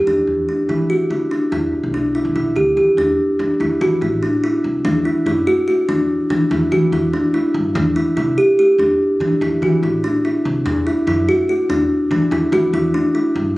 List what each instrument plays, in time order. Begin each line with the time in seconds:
0.07 upright bass E2, kalimba D4
0.27 upright bass E2
0.49 kalimba D4
0.69 upright bass E3, kalimba E4
0.90 kalimba F#4
1.10 upright bass D3, kalimba E4
1.31 kalimba D4
1.52 upright bass E2, kalimba E4
1.83 upright bass B1
1.94 kalimba D4
2.15 kalimba E4
2.25 upright bass E2
2.36 upright bass B1, kalimba E4
2.56 upright bass D2, kalimba G4
2.77 upright bass E2, kalimba G4
2.97 upright bass E2, kalimba D4
3.39 upright bass E3, kalimba D4
3.60 upright bass E2, kalimba E4
3.81 upright bass E3, kalimba F#4
4.01 upright bass A1, kalimba E4
4.23 kalimba D4
4.44 kalimba E4
4.64 upright bass C2
4.85 upright bass E2, kalimba D4
5.05 kalimba E4
5.26 upright bass F#2, kalimba E4
5.47 kalimba F#4
5.68 kalimba F#4
5.89 upright bass E2, kalimba D4
6.30 upright bass E3, kalimba D4
6.51 upright bass E2, kalimba E4
6.72 upright bass E3, kalimba F#4
6.92 upright bass E2, kalimba E4
7.13 kalimba D4
7.34 kalimba E4
7.54 upright bass G2
7.75 upright bass E2, kalimba D4
7.96 kalimba E4
8.17 upright bass C3, kalimba E4
8.38 kalimba G4
8.59 kalimba G4
8.78 upright bass E2, kalimba D4
9.20 upright bass E3, kalimba D4
9.41 upright bass E2, kalimba E4
9.62 upright bass E3, kalimba F#4
9.83 upright bass A1, kalimba E4
10.04 kalimba D4
10.25 kalimba E4
10.45 upright bass C2
10.66 upright bass E2, kalimba D4
10.87 kalimba E4
11.07 upright bass F#2, kalimba E4
11.29 kalimba F#4
11.49 kalimba F#4
11.69 upright bass E2, kalimba D4
12.11 upright bass E3, kalimba D4
12.31 upright bass E2, kalimba E4
12.52 upright bass E3, kalimba F#4
12.73 upright bass E2, kalimba E4
12.94 kalimba D4
13.15 kalimba E4
13.36 upright bass G2